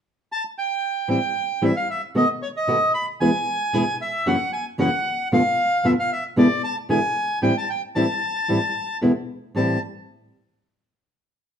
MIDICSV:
0, 0, Header, 1, 3, 480
1, 0, Start_track
1, 0, Tempo, 528634
1, 985, Time_signature, 4, 2, 24, 8
1, 10528, End_track
2, 0, Start_track
2, 0, Title_t, "Bandoneon"
2, 0, Program_c, 0, 23
2, 293, Note_on_c, 0, 81, 79
2, 394, Note_off_c, 0, 81, 0
2, 529, Note_on_c, 0, 79, 76
2, 988, Note_off_c, 0, 79, 0
2, 1002, Note_on_c, 0, 79, 78
2, 1488, Note_off_c, 0, 79, 0
2, 1488, Note_on_c, 0, 76, 75
2, 1589, Note_off_c, 0, 76, 0
2, 1603, Note_on_c, 0, 77, 72
2, 1706, Note_off_c, 0, 77, 0
2, 1729, Note_on_c, 0, 76, 73
2, 1832, Note_off_c, 0, 76, 0
2, 1969, Note_on_c, 0, 75, 75
2, 2072, Note_off_c, 0, 75, 0
2, 2201, Note_on_c, 0, 73, 72
2, 2251, Note_off_c, 0, 73, 0
2, 2331, Note_on_c, 0, 75, 75
2, 2654, Note_off_c, 0, 75, 0
2, 2671, Note_on_c, 0, 83, 77
2, 2778, Note_off_c, 0, 83, 0
2, 2911, Note_on_c, 0, 80, 91
2, 3591, Note_off_c, 0, 80, 0
2, 3646, Note_on_c, 0, 76, 79
2, 3881, Note_on_c, 0, 78, 80
2, 3883, Note_off_c, 0, 76, 0
2, 4097, Note_off_c, 0, 78, 0
2, 4113, Note_on_c, 0, 80, 76
2, 4219, Note_off_c, 0, 80, 0
2, 4359, Note_on_c, 0, 78, 85
2, 4798, Note_off_c, 0, 78, 0
2, 4842, Note_on_c, 0, 77, 86
2, 5315, Note_on_c, 0, 76, 78
2, 5326, Note_off_c, 0, 77, 0
2, 5366, Note_off_c, 0, 76, 0
2, 5442, Note_on_c, 0, 77, 75
2, 5544, Note_off_c, 0, 77, 0
2, 5563, Note_on_c, 0, 76, 74
2, 5666, Note_off_c, 0, 76, 0
2, 5796, Note_on_c, 0, 74, 75
2, 6013, Note_off_c, 0, 74, 0
2, 6029, Note_on_c, 0, 81, 78
2, 6136, Note_off_c, 0, 81, 0
2, 6267, Note_on_c, 0, 80, 80
2, 6710, Note_off_c, 0, 80, 0
2, 6743, Note_on_c, 0, 79, 78
2, 6865, Note_off_c, 0, 79, 0
2, 6879, Note_on_c, 0, 81, 67
2, 6982, Note_off_c, 0, 81, 0
2, 6990, Note_on_c, 0, 79, 71
2, 7096, Note_off_c, 0, 79, 0
2, 7221, Note_on_c, 0, 81, 77
2, 8148, Note_off_c, 0, 81, 0
2, 8680, Note_on_c, 0, 81, 66
2, 8897, Note_off_c, 0, 81, 0
2, 10528, End_track
3, 0, Start_track
3, 0, Title_t, "Nylon-string guitar"
3, 0, Program_c, 1, 24
3, 980, Note_on_c, 1, 45, 68
3, 983, Note_on_c, 1, 52, 63
3, 989, Note_on_c, 1, 55, 75
3, 991, Note_on_c, 1, 60, 74
3, 993, Note_on_c, 1, 64, 69
3, 1065, Note_off_c, 1, 45, 0
3, 1066, Note_off_c, 1, 52, 0
3, 1069, Note_off_c, 1, 55, 0
3, 1070, Note_off_c, 1, 60, 0
3, 1071, Note_off_c, 1, 64, 0
3, 1466, Note_on_c, 1, 45, 65
3, 1469, Note_on_c, 1, 52, 72
3, 1471, Note_on_c, 1, 55, 75
3, 1475, Note_on_c, 1, 64, 76
3, 1476, Note_on_c, 1, 60, 79
3, 1548, Note_off_c, 1, 45, 0
3, 1549, Note_off_c, 1, 52, 0
3, 1550, Note_off_c, 1, 55, 0
3, 1552, Note_off_c, 1, 64, 0
3, 1553, Note_off_c, 1, 60, 0
3, 1949, Note_on_c, 1, 47, 61
3, 1952, Note_on_c, 1, 51, 71
3, 1956, Note_on_c, 1, 57, 77
3, 1956, Note_on_c, 1, 59, 72
3, 1960, Note_on_c, 1, 66, 81
3, 2030, Note_off_c, 1, 47, 0
3, 2031, Note_off_c, 1, 51, 0
3, 2033, Note_off_c, 1, 57, 0
3, 2033, Note_off_c, 1, 59, 0
3, 2035, Note_off_c, 1, 66, 0
3, 2427, Note_on_c, 1, 47, 65
3, 2430, Note_on_c, 1, 51, 76
3, 2433, Note_on_c, 1, 57, 65
3, 2436, Note_on_c, 1, 59, 72
3, 2436, Note_on_c, 1, 66, 72
3, 2509, Note_off_c, 1, 47, 0
3, 2510, Note_off_c, 1, 51, 0
3, 2512, Note_off_c, 1, 57, 0
3, 2513, Note_off_c, 1, 59, 0
3, 2513, Note_off_c, 1, 66, 0
3, 2909, Note_on_c, 1, 40, 68
3, 2913, Note_on_c, 1, 47, 68
3, 2915, Note_on_c, 1, 52, 65
3, 2916, Note_on_c, 1, 56, 75
3, 2919, Note_on_c, 1, 59, 76
3, 2920, Note_on_c, 1, 64, 82
3, 2990, Note_off_c, 1, 40, 0
3, 2991, Note_off_c, 1, 47, 0
3, 2993, Note_off_c, 1, 52, 0
3, 2993, Note_off_c, 1, 56, 0
3, 2994, Note_off_c, 1, 59, 0
3, 2995, Note_off_c, 1, 64, 0
3, 3389, Note_on_c, 1, 40, 75
3, 3391, Note_on_c, 1, 47, 76
3, 3391, Note_on_c, 1, 52, 73
3, 3395, Note_on_c, 1, 56, 75
3, 3396, Note_on_c, 1, 59, 85
3, 3398, Note_on_c, 1, 64, 76
3, 3469, Note_off_c, 1, 40, 0
3, 3470, Note_off_c, 1, 47, 0
3, 3471, Note_off_c, 1, 52, 0
3, 3472, Note_off_c, 1, 56, 0
3, 3473, Note_off_c, 1, 59, 0
3, 3474, Note_off_c, 1, 64, 0
3, 3868, Note_on_c, 1, 42, 75
3, 3871, Note_on_c, 1, 52, 76
3, 3872, Note_on_c, 1, 49, 70
3, 3874, Note_on_c, 1, 58, 76
3, 3876, Note_on_c, 1, 61, 78
3, 3877, Note_on_c, 1, 66, 72
3, 3949, Note_off_c, 1, 42, 0
3, 3950, Note_off_c, 1, 49, 0
3, 3950, Note_off_c, 1, 52, 0
3, 3952, Note_off_c, 1, 58, 0
3, 3952, Note_off_c, 1, 61, 0
3, 3953, Note_off_c, 1, 66, 0
3, 4340, Note_on_c, 1, 42, 77
3, 4345, Note_on_c, 1, 49, 78
3, 4345, Note_on_c, 1, 52, 83
3, 4348, Note_on_c, 1, 58, 77
3, 4349, Note_on_c, 1, 61, 75
3, 4350, Note_on_c, 1, 66, 78
3, 4425, Note_off_c, 1, 42, 0
3, 4427, Note_off_c, 1, 49, 0
3, 4427, Note_off_c, 1, 52, 0
3, 4428, Note_off_c, 1, 58, 0
3, 4429, Note_off_c, 1, 61, 0
3, 4430, Note_off_c, 1, 66, 0
3, 4828, Note_on_c, 1, 41, 68
3, 4831, Note_on_c, 1, 47, 70
3, 4832, Note_on_c, 1, 50, 77
3, 4835, Note_on_c, 1, 57, 81
3, 4839, Note_on_c, 1, 59, 74
3, 4840, Note_on_c, 1, 65, 75
3, 4908, Note_off_c, 1, 41, 0
3, 4909, Note_off_c, 1, 47, 0
3, 4910, Note_off_c, 1, 50, 0
3, 4911, Note_off_c, 1, 57, 0
3, 4914, Note_off_c, 1, 59, 0
3, 4914, Note_off_c, 1, 65, 0
3, 5299, Note_on_c, 1, 41, 71
3, 5303, Note_on_c, 1, 47, 78
3, 5305, Note_on_c, 1, 50, 73
3, 5307, Note_on_c, 1, 57, 87
3, 5311, Note_on_c, 1, 59, 84
3, 5312, Note_on_c, 1, 65, 76
3, 5383, Note_off_c, 1, 41, 0
3, 5385, Note_off_c, 1, 47, 0
3, 5386, Note_off_c, 1, 50, 0
3, 5387, Note_off_c, 1, 57, 0
3, 5389, Note_off_c, 1, 59, 0
3, 5390, Note_off_c, 1, 65, 0
3, 5777, Note_on_c, 1, 40, 71
3, 5781, Note_on_c, 1, 47, 74
3, 5783, Note_on_c, 1, 50, 73
3, 5784, Note_on_c, 1, 56, 76
3, 5788, Note_on_c, 1, 59, 78
3, 5790, Note_on_c, 1, 64, 84
3, 5862, Note_off_c, 1, 40, 0
3, 5863, Note_off_c, 1, 47, 0
3, 5865, Note_off_c, 1, 50, 0
3, 5865, Note_off_c, 1, 56, 0
3, 5867, Note_off_c, 1, 59, 0
3, 5868, Note_off_c, 1, 64, 0
3, 6254, Note_on_c, 1, 40, 62
3, 6256, Note_on_c, 1, 47, 70
3, 6257, Note_on_c, 1, 50, 68
3, 6260, Note_on_c, 1, 56, 67
3, 6262, Note_on_c, 1, 59, 71
3, 6267, Note_on_c, 1, 64, 75
3, 6340, Note_off_c, 1, 40, 0
3, 6341, Note_off_c, 1, 47, 0
3, 6341, Note_off_c, 1, 50, 0
3, 6343, Note_off_c, 1, 56, 0
3, 6344, Note_off_c, 1, 59, 0
3, 6346, Note_off_c, 1, 64, 0
3, 6735, Note_on_c, 1, 45, 71
3, 6738, Note_on_c, 1, 52, 71
3, 6741, Note_on_c, 1, 55, 78
3, 6744, Note_on_c, 1, 60, 70
3, 6745, Note_on_c, 1, 64, 85
3, 6820, Note_off_c, 1, 45, 0
3, 6821, Note_off_c, 1, 52, 0
3, 6823, Note_off_c, 1, 55, 0
3, 6824, Note_off_c, 1, 60, 0
3, 6825, Note_off_c, 1, 64, 0
3, 7220, Note_on_c, 1, 45, 73
3, 7225, Note_on_c, 1, 52, 72
3, 7227, Note_on_c, 1, 55, 75
3, 7230, Note_on_c, 1, 64, 74
3, 7232, Note_on_c, 1, 60, 77
3, 7302, Note_off_c, 1, 45, 0
3, 7305, Note_off_c, 1, 52, 0
3, 7306, Note_off_c, 1, 55, 0
3, 7308, Note_off_c, 1, 60, 0
3, 7308, Note_off_c, 1, 64, 0
3, 7702, Note_on_c, 1, 45, 71
3, 7707, Note_on_c, 1, 52, 71
3, 7708, Note_on_c, 1, 55, 78
3, 7710, Note_on_c, 1, 60, 75
3, 7713, Note_on_c, 1, 64, 82
3, 7784, Note_off_c, 1, 45, 0
3, 7787, Note_off_c, 1, 52, 0
3, 7787, Note_off_c, 1, 55, 0
3, 7788, Note_off_c, 1, 60, 0
3, 7790, Note_off_c, 1, 64, 0
3, 8184, Note_on_c, 1, 40, 70
3, 8188, Note_on_c, 1, 47, 73
3, 8190, Note_on_c, 1, 56, 78
3, 8192, Note_on_c, 1, 50, 63
3, 8194, Note_on_c, 1, 59, 69
3, 8194, Note_on_c, 1, 64, 81
3, 8267, Note_off_c, 1, 40, 0
3, 8268, Note_off_c, 1, 47, 0
3, 8269, Note_off_c, 1, 56, 0
3, 8271, Note_off_c, 1, 50, 0
3, 8272, Note_off_c, 1, 59, 0
3, 8272, Note_off_c, 1, 64, 0
3, 8668, Note_on_c, 1, 45, 72
3, 8674, Note_on_c, 1, 52, 67
3, 8677, Note_on_c, 1, 55, 65
3, 8682, Note_on_c, 1, 60, 71
3, 8686, Note_on_c, 1, 64, 74
3, 8859, Note_off_c, 1, 45, 0
3, 8862, Note_off_c, 1, 52, 0
3, 8864, Note_off_c, 1, 55, 0
3, 8867, Note_off_c, 1, 60, 0
3, 8868, Note_off_c, 1, 64, 0
3, 10528, End_track
0, 0, End_of_file